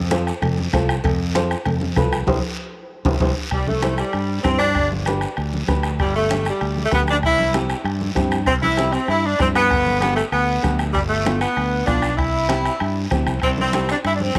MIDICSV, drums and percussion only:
0, 0, Header, 1, 3, 480
1, 0, Start_track
1, 0, Key_signature, 0, "major"
1, 0, Tempo, 309438
1, 1623, Time_signature, 4, 2, 24, 8
1, 22319, End_track
2, 0, Start_track
2, 0, Title_t, "Two-headed folk drums"
2, 175, Note_on_c, 9, 37, 72
2, 330, Note_off_c, 9, 37, 0
2, 420, Note_on_c, 9, 37, 71
2, 575, Note_off_c, 9, 37, 0
2, 658, Note_on_c, 9, 37, 74
2, 814, Note_off_c, 9, 37, 0
2, 1138, Note_on_c, 9, 36, 78
2, 1140, Note_on_c, 9, 37, 82
2, 1293, Note_off_c, 9, 36, 0
2, 1295, Note_off_c, 9, 37, 0
2, 1382, Note_on_c, 9, 37, 91
2, 1537, Note_off_c, 9, 37, 0
2, 1619, Note_on_c, 9, 36, 66
2, 1629, Note_on_c, 9, 37, 73
2, 1774, Note_off_c, 9, 36, 0
2, 1784, Note_off_c, 9, 37, 0
2, 2095, Note_on_c, 9, 37, 71
2, 2250, Note_off_c, 9, 37, 0
2, 2342, Note_on_c, 9, 37, 86
2, 2497, Note_off_c, 9, 37, 0
2, 2567, Note_on_c, 9, 37, 75
2, 2722, Note_off_c, 9, 37, 0
2, 3047, Note_on_c, 9, 37, 74
2, 3052, Note_on_c, 9, 36, 80
2, 3202, Note_off_c, 9, 37, 0
2, 3207, Note_off_c, 9, 36, 0
2, 3298, Note_on_c, 9, 37, 91
2, 3453, Note_off_c, 9, 37, 0
2, 3534, Note_on_c, 9, 36, 84
2, 3689, Note_off_c, 9, 36, 0
2, 4731, Note_on_c, 9, 36, 106
2, 4886, Note_off_c, 9, 36, 0
2, 4971, Note_on_c, 9, 36, 98
2, 5126, Note_off_c, 9, 36, 0
2, 5448, Note_on_c, 9, 37, 74
2, 5453, Note_on_c, 9, 36, 66
2, 5603, Note_off_c, 9, 37, 0
2, 5608, Note_off_c, 9, 36, 0
2, 5933, Note_on_c, 9, 37, 80
2, 6088, Note_off_c, 9, 37, 0
2, 6174, Note_on_c, 9, 37, 75
2, 6329, Note_off_c, 9, 37, 0
2, 6408, Note_on_c, 9, 37, 73
2, 6563, Note_off_c, 9, 37, 0
2, 6893, Note_on_c, 9, 37, 77
2, 6894, Note_on_c, 9, 36, 74
2, 7048, Note_off_c, 9, 37, 0
2, 7049, Note_off_c, 9, 36, 0
2, 7126, Note_on_c, 9, 37, 80
2, 7281, Note_off_c, 9, 37, 0
2, 7365, Note_on_c, 9, 37, 68
2, 7372, Note_on_c, 9, 36, 68
2, 7520, Note_off_c, 9, 37, 0
2, 7527, Note_off_c, 9, 36, 0
2, 7850, Note_on_c, 9, 37, 76
2, 8005, Note_off_c, 9, 37, 0
2, 8083, Note_on_c, 9, 37, 77
2, 8238, Note_off_c, 9, 37, 0
2, 8328, Note_on_c, 9, 37, 73
2, 8484, Note_off_c, 9, 37, 0
2, 8816, Note_on_c, 9, 36, 70
2, 8817, Note_on_c, 9, 37, 69
2, 8971, Note_off_c, 9, 36, 0
2, 8972, Note_off_c, 9, 37, 0
2, 9049, Note_on_c, 9, 37, 83
2, 9204, Note_off_c, 9, 37, 0
2, 9298, Note_on_c, 9, 36, 71
2, 9303, Note_on_c, 9, 37, 73
2, 9453, Note_off_c, 9, 36, 0
2, 9458, Note_off_c, 9, 37, 0
2, 9786, Note_on_c, 9, 37, 75
2, 9941, Note_off_c, 9, 37, 0
2, 10024, Note_on_c, 9, 37, 75
2, 10180, Note_off_c, 9, 37, 0
2, 10254, Note_on_c, 9, 37, 69
2, 10409, Note_off_c, 9, 37, 0
2, 10725, Note_on_c, 9, 37, 72
2, 10736, Note_on_c, 9, 36, 74
2, 10880, Note_off_c, 9, 37, 0
2, 10891, Note_off_c, 9, 36, 0
2, 10981, Note_on_c, 9, 37, 80
2, 11136, Note_off_c, 9, 37, 0
2, 11217, Note_on_c, 9, 37, 73
2, 11219, Note_on_c, 9, 36, 68
2, 11373, Note_off_c, 9, 37, 0
2, 11374, Note_off_c, 9, 36, 0
2, 11701, Note_on_c, 9, 37, 72
2, 11856, Note_off_c, 9, 37, 0
2, 11941, Note_on_c, 9, 37, 75
2, 12096, Note_off_c, 9, 37, 0
2, 12183, Note_on_c, 9, 37, 78
2, 12339, Note_off_c, 9, 37, 0
2, 12659, Note_on_c, 9, 36, 70
2, 12661, Note_on_c, 9, 37, 77
2, 12814, Note_off_c, 9, 36, 0
2, 12816, Note_off_c, 9, 37, 0
2, 12903, Note_on_c, 9, 37, 91
2, 13058, Note_off_c, 9, 37, 0
2, 13129, Note_on_c, 9, 37, 67
2, 13135, Note_on_c, 9, 36, 71
2, 13284, Note_off_c, 9, 37, 0
2, 13290, Note_off_c, 9, 36, 0
2, 13611, Note_on_c, 9, 37, 69
2, 13766, Note_off_c, 9, 37, 0
2, 13845, Note_on_c, 9, 37, 68
2, 14000, Note_off_c, 9, 37, 0
2, 14089, Note_on_c, 9, 37, 64
2, 14244, Note_off_c, 9, 37, 0
2, 14573, Note_on_c, 9, 37, 76
2, 14578, Note_on_c, 9, 36, 78
2, 14728, Note_off_c, 9, 37, 0
2, 14733, Note_off_c, 9, 36, 0
2, 14820, Note_on_c, 9, 37, 85
2, 14976, Note_off_c, 9, 37, 0
2, 15055, Note_on_c, 9, 37, 70
2, 15061, Note_on_c, 9, 36, 67
2, 15210, Note_off_c, 9, 37, 0
2, 15216, Note_off_c, 9, 36, 0
2, 15539, Note_on_c, 9, 37, 71
2, 15694, Note_off_c, 9, 37, 0
2, 15775, Note_on_c, 9, 37, 76
2, 15930, Note_off_c, 9, 37, 0
2, 16015, Note_on_c, 9, 37, 73
2, 16170, Note_off_c, 9, 37, 0
2, 16502, Note_on_c, 9, 36, 79
2, 16502, Note_on_c, 9, 37, 78
2, 16657, Note_off_c, 9, 36, 0
2, 16657, Note_off_c, 9, 37, 0
2, 16742, Note_on_c, 9, 37, 79
2, 16897, Note_off_c, 9, 37, 0
2, 16981, Note_on_c, 9, 37, 73
2, 16983, Note_on_c, 9, 36, 68
2, 17136, Note_off_c, 9, 37, 0
2, 17139, Note_off_c, 9, 36, 0
2, 17473, Note_on_c, 9, 37, 70
2, 17628, Note_off_c, 9, 37, 0
2, 17702, Note_on_c, 9, 37, 74
2, 17857, Note_off_c, 9, 37, 0
2, 17947, Note_on_c, 9, 37, 69
2, 18102, Note_off_c, 9, 37, 0
2, 18417, Note_on_c, 9, 37, 76
2, 18421, Note_on_c, 9, 36, 74
2, 18573, Note_off_c, 9, 37, 0
2, 18576, Note_off_c, 9, 36, 0
2, 18651, Note_on_c, 9, 37, 81
2, 18806, Note_off_c, 9, 37, 0
2, 18901, Note_on_c, 9, 36, 72
2, 18902, Note_on_c, 9, 37, 67
2, 19056, Note_off_c, 9, 36, 0
2, 19057, Note_off_c, 9, 37, 0
2, 19375, Note_on_c, 9, 37, 78
2, 19530, Note_off_c, 9, 37, 0
2, 19630, Note_on_c, 9, 37, 74
2, 19785, Note_off_c, 9, 37, 0
2, 19860, Note_on_c, 9, 37, 79
2, 20015, Note_off_c, 9, 37, 0
2, 20337, Note_on_c, 9, 37, 73
2, 20342, Note_on_c, 9, 36, 79
2, 20492, Note_off_c, 9, 37, 0
2, 20497, Note_off_c, 9, 36, 0
2, 20579, Note_on_c, 9, 37, 87
2, 20734, Note_off_c, 9, 37, 0
2, 20811, Note_on_c, 9, 37, 67
2, 20823, Note_on_c, 9, 36, 66
2, 20966, Note_off_c, 9, 37, 0
2, 20978, Note_off_c, 9, 36, 0
2, 21303, Note_on_c, 9, 37, 79
2, 21458, Note_off_c, 9, 37, 0
2, 21543, Note_on_c, 9, 37, 74
2, 21698, Note_off_c, 9, 37, 0
2, 21788, Note_on_c, 9, 37, 69
2, 21943, Note_off_c, 9, 37, 0
2, 22263, Note_on_c, 9, 37, 78
2, 22268, Note_on_c, 9, 36, 79
2, 22319, Note_off_c, 9, 36, 0
2, 22319, Note_off_c, 9, 37, 0
2, 22319, End_track
3, 0, Start_track
3, 0, Title_t, "Drums"
3, 171, Note_on_c, 9, 63, 95
3, 176, Note_on_c, 9, 73, 74
3, 326, Note_off_c, 9, 63, 0
3, 331, Note_off_c, 9, 73, 0
3, 427, Note_on_c, 9, 73, 79
3, 582, Note_off_c, 9, 73, 0
3, 658, Note_on_c, 9, 63, 32
3, 658, Note_on_c, 9, 64, 80
3, 661, Note_on_c, 9, 56, 82
3, 674, Note_on_c, 9, 74, 65
3, 814, Note_off_c, 9, 63, 0
3, 814, Note_off_c, 9, 64, 0
3, 816, Note_off_c, 9, 56, 0
3, 830, Note_off_c, 9, 74, 0
3, 901, Note_on_c, 9, 63, 70
3, 1056, Note_off_c, 9, 63, 0
3, 1135, Note_on_c, 9, 63, 81
3, 1135, Note_on_c, 9, 64, 69
3, 1159, Note_on_c, 9, 73, 61
3, 1290, Note_off_c, 9, 63, 0
3, 1290, Note_off_c, 9, 64, 0
3, 1314, Note_off_c, 9, 73, 0
3, 1394, Note_on_c, 9, 73, 61
3, 1549, Note_off_c, 9, 73, 0
3, 1611, Note_on_c, 9, 56, 100
3, 1625, Note_on_c, 9, 63, 35
3, 1625, Note_on_c, 9, 64, 68
3, 1632, Note_on_c, 9, 74, 74
3, 1766, Note_off_c, 9, 56, 0
3, 1780, Note_off_c, 9, 63, 0
3, 1780, Note_off_c, 9, 64, 0
3, 1787, Note_off_c, 9, 74, 0
3, 2098, Note_on_c, 9, 63, 92
3, 2111, Note_on_c, 9, 73, 70
3, 2253, Note_off_c, 9, 63, 0
3, 2266, Note_off_c, 9, 73, 0
3, 2342, Note_on_c, 9, 73, 69
3, 2498, Note_off_c, 9, 73, 0
3, 2571, Note_on_c, 9, 63, 32
3, 2571, Note_on_c, 9, 64, 74
3, 2579, Note_on_c, 9, 56, 76
3, 2585, Note_on_c, 9, 74, 63
3, 2726, Note_off_c, 9, 63, 0
3, 2726, Note_off_c, 9, 64, 0
3, 2734, Note_off_c, 9, 56, 0
3, 2740, Note_off_c, 9, 74, 0
3, 2812, Note_on_c, 9, 63, 72
3, 2967, Note_off_c, 9, 63, 0
3, 3046, Note_on_c, 9, 63, 74
3, 3046, Note_on_c, 9, 64, 71
3, 3060, Note_on_c, 9, 66, 65
3, 3062, Note_on_c, 9, 73, 65
3, 3201, Note_off_c, 9, 63, 0
3, 3201, Note_off_c, 9, 64, 0
3, 3215, Note_off_c, 9, 66, 0
3, 3217, Note_off_c, 9, 73, 0
3, 3296, Note_on_c, 9, 73, 68
3, 3451, Note_off_c, 9, 73, 0
3, 3518, Note_on_c, 9, 63, 97
3, 3529, Note_on_c, 9, 65, 102
3, 3533, Note_on_c, 9, 74, 89
3, 3674, Note_off_c, 9, 63, 0
3, 3684, Note_off_c, 9, 65, 0
3, 3688, Note_off_c, 9, 74, 0
3, 4730, Note_on_c, 9, 63, 91
3, 4730, Note_on_c, 9, 74, 97
3, 4742, Note_on_c, 9, 65, 103
3, 4885, Note_off_c, 9, 63, 0
3, 4885, Note_off_c, 9, 74, 0
3, 4897, Note_off_c, 9, 65, 0
3, 4966, Note_on_c, 9, 63, 95
3, 4973, Note_on_c, 9, 74, 94
3, 4974, Note_on_c, 9, 65, 94
3, 5121, Note_off_c, 9, 63, 0
3, 5128, Note_off_c, 9, 74, 0
3, 5130, Note_off_c, 9, 65, 0
3, 5450, Note_on_c, 9, 74, 60
3, 5457, Note_on_c, 9, 63, 28
3, 5605, Note_off_c, 9, 74, 0
3, 5612, Note_off_c, 9, 63, 0
3, 5701, Note_on_c, 9, 63, 64
3, 5856, Note_off_c, 9, 63, 0
3, 5930, Note_on_c, 9, 73, 61
3, 5933, Note_on_c, 9, 63, 81
3, 6085, Note_off_c, 9, 73, 0
3, 6088, Note_off_c, 9, 63, 0
3, 6170, Note_on_c, 9, 73, 73
3, 6325, Note_off_c, 9, 73, 0
3, 6412, Note_on_c, 9, 74, 60
3, 6423, Note_on_c, 9, 63, 33
3, 6567, Note_off_c, 9, 74, 0
3, 6578, Note_off_c, 9, 63, 0
3, 6886, Note_on_c, 9, 73, 64
3, 6900, Note_on_c, 9, 63, 73
3, 7041, Note_off_c, 9, 73, 0
3, 7055, Note_off_c, 9, 63, 0
3, 7122, Note_on_c, 9, 73, 66
3, 7277, Note_off_c, 9, 73, 0
3, 7375, Note_on_c, 9, 74, 61
3, 7386, Note_on_c, 9, 63, 29
3, 7531, Note_off_c, 9, 74, 0
3, 7541, Note_off_c, 9, 63, 0
3, 7631, Note_on_c, 9, 63, 57
3, 7786, Note_off_c, 9, 63, 0
3, 7849, Note_on_c, 9, 73, 62
3, 7870, Note_on_c, 9, 63, 82
3, 8004, Note_off_c, 9, 73, 0
3, 8025, Note_off_c, 9, 63, 0
3, 8092, Note_on_c, 9, 73, 72
3, 8247, Note_off_c, 9, 73, 0
3, 8339, Note_on_c, 9, 74, 62
3, 8345, Note_on_c, 9, 63, 29
3, 8494, Note_off_c, 9, 74, 0
3, 8500, Note_off_c, 9, 63, 0
3, 8583, Note_on_c, 9, 63, 64
3, 8738, Note_off_c, 9, 63, 0
3, 8815, Note_on_c, 9, 73, 60
3, 8819, Note_on_c, 9, 63, 70
3, 8970, Note_off_c, 9, 73, 0
3, 8974, Note_off_c, 9, 63, 0
3, 9050, Note_on_c, 9, 73, 61
3, 9205, Note_off_c, 9, 73, 0
3, 9294, Note_on_c, 9, 74, 58
3, 9302, Note_on_c, 9, 63, 34
3, 9449, Note_off_c, 9, 74, 0
3, 9457, Note_off_c, 9, 63, 0
3, 9771, Note_on_c, 9, 73, 64
3, 9783, Note_on_c, 9, 63, 91
3, 9926, Note_off_c, 9, 73, 0
3, 9938, Note_off_c, 9, 63, 0
3, 10008, Note_on_c, 9, 73, 75
3, 10163, Note_off_c, 9, 73, 0
3, 10254, Note_on_c, 9, 74, 65
3, 10265, Note_on_c, 9, 63, 33
3, 10409, Note_off_c, 9, 74, 0
3, 10420, Note_off_c, 9, 63, 0
3, 10501, Note_on_c, 9, 63, 54
3, 10656, Note_off_c, 9, 63, 0
3, 10734, Note_on_c, 9, 63, 70
3, 10735, Note_on_c, 9, 73, 63
3, 10889, Note_off_c, 9, 63, 0
3, 10890, Note_off_c, 9, 73, 0
3, 10973, Note_on_c, 9, 73, 59
3, 11128, Note_off_c, 9, 73, 0
3, 11212, Note_on_c, 9, 63, 32
3, 11217, Note_on_c, 9, 74, 62
3, 11367, Note_off_c, 9, 63, 0
3, 11372, Note_off_c, 9, 74, 0
3, 11459, Note_on_c, 9, 63, 62
3, 11614, Note_off_c, 9, 63, 0
3, 11698, Note_on_c, 9, 73, 67
3, 11700, Note_on_c, 9, 63, 83
3, 11853, Note_off_c, 9, 73, 0
3, 11855, Note_off_c, 9, 63, 0
3, 11937, Note_on_c, 9, 73, 65
3, 12092, Note_off_c, 9, 73, 0
3, 12186, Note_on_c, 9, 63, 31
3, 12186, Note_on_c, 9, 74, 64
3, 12341, Note_off_c, 9, 63, 0
3, 12341, Note_off_c, 9, 74, 0
3, 12426, Note_on_c, 9, 63, 62
3, 12581, Note_off_c, 9, 63, 0
3, 12667, Note_on_c, 9, 73, 62
3, 12669, Note_on_c, 9, 63, 71
3, 12822, Note_off_c, 9, 73, 0
3, 12824, Note_off_c, 9, 63, 0
3, 12893, Note_on_c, 9, 73, 63
3, 13049, Note_off_c, 9, 73, 0
3, 13133, Note_on_c, 9, 74, 59
3, 13147, Note_on_c, 9, 63, 30
3, 13288, Note_off_c, 9, 74, 0
3, 13303, Note_off_c, 9, 63, 0
3, 13386, Note_on_c, 9, 63, 65
3, 13541, Note_off_c, 9, 63, 0
3, 13611, Note_on_c, 9, 73, 64
3, 13629, Note_on_c, 9, 63, 88
3, 13766, Note_off_c, 9, 73, 0
3, 13785, Note_off_c, 9, 63, 0
3, 13857, Note_on_c, 9, 73, 69
3, 14012, Note_off_c, 9, 73, 0
3, 14099, Note_on_c, 9, 74, 55
3, 14110, Note_on_c, 9, 63, 31
3, 14254, Note_off_c, 9, 74, 0
3, 14265, Note_off_c, 9, 63, 0
3, 14578, Note_on_c, 9, 73, 62
3, 14587, Note_on_c, 9, 63, 79
3, 14733, Note_off_c, 9, 73, 0
3, 14742, Note_off_c, 9, 63, 0
3, 14818, Note_on_c, 9, 73, 61
3, 14973, Note_off_c, 9, 73, 0
3, 15065, Note_on_c, 9, 63, 30
3, 15069, Note_on_c, 9, 74, 63
3, 15220, Note_off_c, 9, 63, 0
3, 15225, Note_off_c, 9, 74, 0
3, 15304, Note_on_c, 9, 63, 60
3, 15459, Note_off_c, 9, 63, 0
3, 15542, Note_on_c, 9, 73, 58
3, 15544, Note_on_c, 9, 63, 82
3, 15697, Note_off_c, 9, 73, 0
3, 15699, Note_off_c, 9, 63, 0
3, 15790, Note_on_c, 9, 73, 71
3, 15945, Note_off_c, 9, 73, 0
3, 16019, Note_on_c, 9, 74, 61
3, 16030, Note_on_c, 9, 63, 32
3, 16174, Note_off_c, 9, 74, 0
3, 16186, Note_off_c, 9, 63, 0
3, 16498, Note_on_c, 9, 73, 60
3, 16510, Note_on_c, 9, 63, 78
3, 16653, Note_off_c, 9, 73, 0
3, 16665, Note_off_c, 9, 63, 0
3, 16736, Note_on_c, 9, 73, 64
3, 16891, Note_off_c, 9, 73, 0
3, 16984, Note_on_c, 9, 74, 70
3, 16995, Note_on_c, 9, 63, 30
3, 17139, Note_off_c, 9, 74, 0
3, 17150, Note_off_c, 9, 63, 0
3, 17452, Note_on_c, 9, 73, 65
3, 17474, Note_on_c, 9, 63, 82
3, 17607, Note_off_c, 9, 73, 0
3, 17629, Note_off_c, 9, 63, 0
3, 17699, Note_on_c, 9, 73, 71
3, 17854, Note_off_c, 9, 73, 0
3, 17935, Note_on_c, 9, 74, 58
3, 17955, Note_on_c, 9, 63, 29
3, 18091, Note_off_c, 9, 74, 0
3, 18111, Note_off_c, 9, 63, 0
3, 18413, Note_on_c, 9, 73, 65
3, 18425, Note_on_c, 9, 63, 71
3, 18568, Note_off_c, 9, 73, 0
3, 18580, Note_off_c, 9, 63, 0
3, 18659, Note_on_c, 9, 73, 67
3, 18814, Note_off_c, 9, 73, 0
3, 18903, Note_on_c, 9, 63, 35
3, 18903, Note_on_c, 9, 74, 69
3, 19058, Note_off_c, 9, 63, 0
3, 19058, Note_off_c, 9, 74, 0
3, 19383, Note_on_c, 9, 63, 86
3, 19393, Note_on_c, 9, 73, 61
3, 19538, Note_off_c, 9, 63, 0
3, 19548, Note_off_c, 9, 73, 0
3, 19632, Note_on_c, 9, 73, 68
3, 19787, Note_off_c, 9, 73, 0
3, 19863, Note_on_c, 9, 74, 62
3, 19865, Note_on_c, 9, 63, 29
3, 20019, Note_off_c, 9, 74, 0
3, 20020, Note_off_c, 9, 63, 0
3, 20340, Note_on_c, 9, 73, 59
3, 20347, Note_on_c, 9, 63, 76
3, 20496, Note_off_c, 9, 73, 0
3, 20502, Note_off_c, 9, 63, 0
3, 20580, Note_on_c, 9, 73, 57
3, 20735, Note_off_c, 9, 73, 0
3, 20825, Note_on_c, 9, 74, 61
3, 20829, Note_on_c, 9, 63, 31
3, 20838, Note_on_c, 9, 65, 67
3, 20980, Note_off_c, 9, 74, 0
3, 20984, Note_off_c, 9, 63, 0
3, 20993, Note_off_c, 9, 65, 0
3, 21064, Note_on_c, 9, 63, 64
3, 21219, Note_off_c, 9, 63, 0
3, 21301, Note_on_c, 9, 63, 89
3, 21307, Note_on_c, 9, 73, 62
3, 21315, Note_on_c, 9, 65, 67
3, 21456, Note_off_c, 9, 63, 0
3, 21462, Note_off_c, 9, 73, 0
3, 21470, Note_off_c, 9, 65, 0
3, 21545, Note_on_c, 9, 73, 67
3, 21552, Note_on_c, 9, 65, 59
3, 21700, Note_off_c, 9, 73, 0
3, 21707, Note_off_c, 9, 65, 0
3, 21786, Note_on_c, 9, 63, 30
3, 21787, Note_on_c, 9, 65, 59
3, 21792, Note_on_c, 9, 74, 64
3, 21941, Note_off_c, 9, 63, 0
3, 21942, Note_off_c, 9, 65, 0
3, 21947, Note_off_c, 9, 74, 0
3, 22030, Note_on_c, 9, 63, 61
3, 22185, Note_off_c, 9, 63, 0
3, 22261, Note_on_c, 9, 63, 76
3, 22266, Note_on_c, 9, 73, 59
3, 22319, Note_off_c, 9, 63, 0
3, 22319, Note_off_c, 9, 73, 0
3, 22319, End_track
0, 0, End_of_file